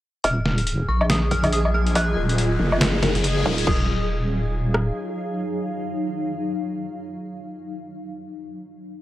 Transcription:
0.24 D#1 F#3 F4 G#4 D#5 F6, kick, closed hi-hat, riser, low woodblock
0.45 F#3 D#4 F4 A#4, snare
0.58 closed hi-hat
0.67 closed hi-hat
0.88 A#1 F#3 D#4 F4 A#4 C#6
1.01 high conga, low woodblock
1.10 D#6, snare, closed hi-hat
1.31 F#3 D#4 F4 A#4 F6, kick, closed hi-hat, high conga, low conga
1.43 closed hi-hat, low conga, low woodblock
1.53 D#6, closed hi-hat
1.65 low woodblock
1.74 F#3 D#4 F4 A#4 F6
1.87 closed hi-hat
1.95 F#6, kick, closed hi-hat, low woodblock
2.17 D#1 F#3 D#4 F4 A#4
2.29 closed hi-hat
2.38 closed hi-hat
2.59 F#1 F#3 D#4 F4 A#4
2.72 high conga, low woodblock
2.81 snare, closed hi-hat
3.02 F#3 D#4 F4 A#4, snare, closed hi-hat, high conga, low conga
3.15 closed hi-hat, low conga
3.24 closed hi-hat
3.45 D#1 F#3 D#4 F4 A#4, kick
3.58 closed hi-hat
3.67 D#1 F#3 D#4 F4 A#4 F5 D#6, kick, crash
4.74 cross-stick

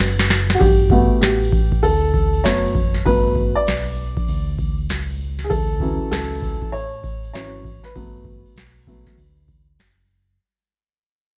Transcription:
Already playing: F#3 A3 B3
0.00 F#1, snare, hi-hat pedal, ride
0.20 snare
0.31 snare, ride
0.50 snare
0.55 F#4
0.60 G1 G4, kick, ride
0.90 A3 B3 F#4, kick, ride
1.11 muted fingered electric bass stroke
1.21 A1 G4, snare, hi-hat pedal, ride
1.53 kick, ride
1.72 kick, ride
1.83 D2 A4, ride
2.14 kick, ride
2.33 ride
2.44 F#1 F#3 A3 B3 C#5, snare, hi-hat pedal, ride
2.75 kick, ride
2.94 snare, ride
3.05 G1 F#3 A3 B3 B4, kick, ride
3.35 kick, ride
3.55 D5
3.67 B1, snare, hi-hat pedal, ride
3.98 ride
4.16 muted fingered electric bass stroke, kick, ride
4.28 D2, ride
4.59 kick, ride
4.78 ride
4.90 C#2, snare, hi-hat pedal, ride
5.21 ride
5.39 snare, ride
5.45 G#4
5.50 D2 A4, kick, ride
5.80 E3 F#3 C#4, kick, ride
6.01 muted fingered electric bass stroke
6.11 C#2 A4, snare, hi-hat pedal, ride
6.42 kick, ride
6.62 kick, ride
6.72 A1 C#5, ride
7.04 kick, ride
7.23 ride
7.33 G#1 E3 F#3 C#4 C#5, snare, hi-hat pedal, ride
7.64 kick, ride
7.83 B4, snare, ride
7.95 G1 F#3 A3 B3, kick, ride
8.25 kick, ride
8.45 muted fingered electric bass stroke, ride
8.56 B1, snare, hi-hat pedal, ride
8.87 F#3 A3 B3, kick, ride
9.06 kick, snare, ride
9.17 D2, ride
9.48 kick, ride
9.79 F#1, snare, hi-hat pedal, ride
10.11 ride

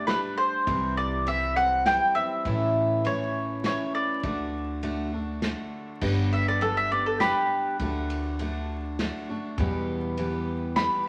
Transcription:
Already playing: G1
0.07 G3 A3 D4 G4 B4, snare, ride
0.38 C5
0.67 C2 C3 E3 G3 C4 E4, kick, ride
0.97 D5
1.26 E3 G3 C4 E4 E5, ride
1.55 G3 C4 E4 F#5
1.86 E3 G3 C4 E4 G5, snare, ride
2.15 G3 C4 E4 E5
2.45 A1 A2 E3 A3 C#4 E4, kick, ride
3.04 E3 A3 C#4 E4 C#5, ride
3.63 E3 A3 C#4 E4 C#5, snare, ride
3.95 D5
4.23 D2 D3 A3 D4 F#4, kick, ride
4.83 D3 A3 D4 F#4, ride
5.13 A3 D4 F#4
5.42 D3 A3 D4 F#4, snare, ride
6.01 G1 G2 D3 G3 B3 D4 G4, kick, crash
6.33 E5
6.48 D5
6.61 G3 B3 D4 G4 A4, ride
6.77 E5
6.91 G3 B3 D4 G4 D5
7.06 A4
7.20 G3 B3 D4 G4 B4, snare, ride
7.80 D2 D3 A3 D4 F#4, kick, ride
8.10 ride
8.39 D3 A3 D4 F#4, ride
8.99 D3 A3 D4 F#4, snare, ride
9.29 A3 D4 F#4
9.58 E2 B2 E3 G3 B3 G4, kick, ride
10.17 E3 G3 B3 G4, ride
10.76 E3 G3 B3 G4 B5, snare, ride

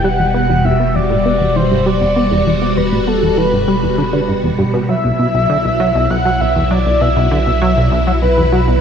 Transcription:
Already playing: E1 B2 G3
0.04 G3 F#4 F#5
0.19 E2
0.34 B3 F#5
0.49 E2
0.65 E2 E5
0.80 B3
0.95 E2 D5
1.10 A2
1.25 B3 D5
1.41 E2
1.56 E3 C5
1.71 G2
1.86 G3 D5
2.01 E2
2.16 B3
2.31 E2
2.47 E2 D5
2.62 B3
2.77 E2 B4
2.92 A2
3.07 B3 A4
3.22 E2
3.38 E3 B4
3.53 G2
3.68 G3
3.83 E2
3.98 D3
4.13 D3
4.28 G2
4.43 E2
4.58 G2
4.74 B2
4.89 B1 B2 F#3 E4 E5
5.04 B1
5.19 B2
5.34 B1
5.49 D3
5.65 B1
5.80 F#3
5.95 B1
6.10 B1 F#5
6.25 F#3
6.40 B1 E5
6.56 E2
6.71 F#3 D5
6.86 B1
7.01 B2 E5
7.16 B1
7.31 D3 E5
7.46 B1
7.62 F#3
7.77 B1
7.92 B1
8.07 F#3
8.22 B1 B4
8.37 E2
8.52 F#3
8.68 B1

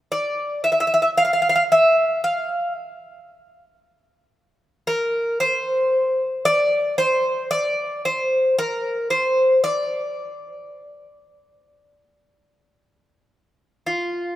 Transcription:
0.12 D5
0.64 E5
0.72 E5
0.80 E5
0.87 E5
0.94 E5
1.02 E5
1.18 F5
1.25 F5
1.33 F5
1.42 F5
1.49 F5
1.56 F5
1.72 E5
2.24 F5
4.87 A#4
5.40 C5
6.45 D5
6.98 C5
7.51 D5
8.05 C5
8.59 A#4
9.10 C5
9.64 D5
13.86 F4

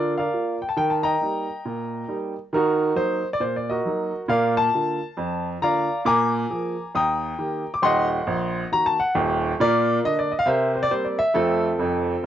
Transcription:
Already playing: D3 F4 A#4 D5
0.18 A#4 D5 F5
0.33 A#3 F4
0.62 G5
0.69 A5
0.76 D#3 G5
0.90 A5
1.03 D#5 G5 A#5
1.21 G3 A#3 D#4
1.65 A#2
2.08 G3 A#3 D#4
2.53 D#3 D#4 F#4 A#4
2.96 F#3 A#3 D#4 C5
3.33 D5
3.40 A#2 C5
3.56 D5
3.70 F#4 A#4 D#5
3.86 F#3 A#3 D#4
4.29 A#2 A#4 D5 F5
4.57 A5
4.74 D3 A#3 F4
5.17 F2
5.62 D3 A#3 F4 D5 F5 A#5
6.05 A#2 G#5 A#5 D6
6.50 F3 A#3 G#4
6.94 D#2 G5 A#5 D#6
7.38 D#3 A#3 G4
7.74 D6
7.82 D#1 D#2 D#5 F#5 C6
8.27 A#1
8.72 D#3 A#3 F#4 A#5
8.86 A5
9.00 F#5
9.15 D#1 D#2
9.60 A#2 F4 A#4 D5
10.04 D3 A#3 D4 D#5
10.19 D5
10.32 D#5
10.39 F5
10.46 C3 A#4 C5 E5
10.76 C5
10.83 D5
10.91 G3 A#3 C4 C5
11.05 D5
11.19 E5
11.34 F2 A3 C4 F4 A4
11.78 F1 F2

